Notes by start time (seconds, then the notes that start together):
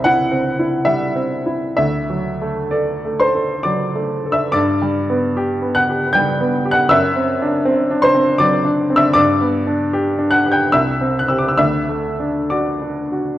Already playing: C2 G3 C4 E5
0.04 E4 F#5
0.31 C4
0.59 E4
0.85 G3 E5
1.16 C4
1.46 E4
1.77 D2 E5
2.10 F#3
2.41 A3
2.71 A4 D5
3.05 A3
3.20 C5 C6
3.35 A4
3.63 F#3 D5 D6
3.95 A3
4.26 A4
4.32 E5 E6
4.52 G2 D5 D6
4.82 G3
5.10 B3
5.37 G4
5.62 B3
5.75 F#5 F#6
5.90 G4
6.13 G3 G5 G6
6.40 B3
6.66 G4
6.71 F#5 F#6
6.89 F#2 E5 E6
7.16 C4
7.42 D4
7.65 C4
7.91 D4
8.02 C5 C6
8.15 C4
8.39 F#3 D5 D6
8.65 D4
8.90 C4
8.96 E5 E6
9.14 G2 D5 D6
9.41 B3
9.67 D4
9.93 G4
10.18 D4
10.30 F#5 F#6
10.46 G4
10.51 G5 G6
10.72 C2 E5 E6
11.01 C4
11.19 F#6
11.28 C4 G4 E6
11.38 D6
11.48 E6
11.57 D2 E5 E6
11.89 A3
12.20 D4
12.50 F#4 D5 D6
12.82 D4
13.12 F#4